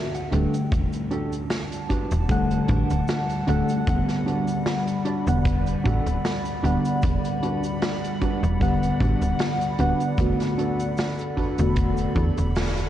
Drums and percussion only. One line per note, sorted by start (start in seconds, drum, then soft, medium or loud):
0.14 closed hi-hat medium
0.14 cabasa soft
0.32 closed hi-hat medium
0.54 closed hi-hat medium
0.54 cabasa medium
0.72 kick loud
0.72 closed hi-hat medium
0.72 cabasa medium
0.93 closed hi-hat medium
0.93 cabasa soft
1.11 closed hi-hat medium
1.33 closed hi-hat medium
1.33 cabasa medium
1.50 snare loud
1.50 closed hi-hat medium
1.50 cabasa medium
1.72 closed hi-hat medium
1.72 cabasa soft
1.90 kick medium
1.90 closed hi-hat medium
2.11 closed hi-hat medium
2.11 cabasa medium
2.29 kick loud
2.29 closed hi-hat medium
2.29 cabasa medium
2.51 closed hi-hat medium
2.51 cabasa soft
2.68 kick loud
2.68 closed hi-hat medium
2.90 closed hi-hat medium
2.90 cabasa medium
3.08 snare loud
3.08 closed hi-hat medium
3.08 cabasa medium
3.29 closed hi-hat medium
3.29 cabasa soft
3.48 closed hi-hat medium
3.69 closed hi-hat medium
3.69 cabasa medium
3.87 kick loud
3.87 closed hi-hat medium
3.87 cabasa medium
4.09 snare soft
4.09 closed hi-hat medium
4.09 cabasa soft
4.28 closed hi-hat medium
4.48 closed hi-hat soft
4.48 cabasa medium
4.66 snare loud
4.66 closed hi-hat medium
4.66 cabasa medium
4.87 closed hi-hat medium
4.87 cabasa soft
5.05 closed hi-hat medium
5.27 closed hi-hat medium
5.27 cabasa medium
5.45 kick loud
5.45 closed hi-hat loud
5.45 cabasa medium
5.67 closed hi-hat medium
5.67 cabasa soft
5.85 kick loud
5.85 closed hi-hat medium
6.06 closed hi-hat medium
6.06 cabasa medium
6.25 snare loud
6.25 closed hi-hat loud
6.25 cabasa medium
6.45 closed hi-hat medium
6.45 cabasa soft
6.65 closed hi-hat medium
6.85 closed hi-hat medium
6.85 cabasa medium
7.02 kick loud
7.02 closed hi-hat loud
7.02 cabasa medium
7.25 closed hi-hat medium
7.25 cabasa soft
7.43 closed hi-hat medium
7.64 closed hi-hat medium
7.64 cabasa medium
7.82 snare loud
7.82 closed hi-hat loud
7.82 cabasa medium
8.04 closed hi-hat medium
8.04 cabasa soft
8.22 kick medium
8.22 closed hi-hat medium
8.44 closed hi-hat medium
8.44 cabasa medium
8.61 kick loud
8.61 closed hi-hat medium
8.61 cabasa medium
8.83 closed hi-hat medium
8.83 cabasa soft
9.00 kick medium
9.00 closed hi-hat medium
9.22 closed hi-hat medium
9.22 cabasa medium
9.39 snare loud
9.39 closed hi-hat loud
9.39 cabasa medium
9.61 closed hi-hat medium
9.61 cabasa soft
9.79 closed hi-hat medium
10.00 closed hi-hat medium
10.00 cabasa medium
10.18 kick loud
10.18 closed hi-hat loud
10.18 cabasa medium
10.40 snare soft
10.40 closed hi-hat medium
10.40 cabasa soft
10.59 closed hi-hat medium
10.80 closed hi-hat medium
10.80 cabasa medium
10.97 snare loud
10.97 closed hi-hat medium
10.97 cabasa medium
11.19 closed hi-hat medium
11.19 cabasa soft
11.37 kick medium
11.37 closed hi-hat medium
11.58 closed hi-hat medium
11.58 cabasa medium
11.76 kick loud
11.76 closed hi-hat loud
11.76 cabasa medium
11.97 closed hi-hat medium
11.97 cabasa medium
12.16 kick medium
12.16 closed hi-hat medium
12.38 closed hi-hat medium
12.38 cabasa medium
12.56 snare loud
12.56 closed hi-hat loud
12.56 cabasa medium
12.77 closed hi-hat medium
12.77 cabasa soft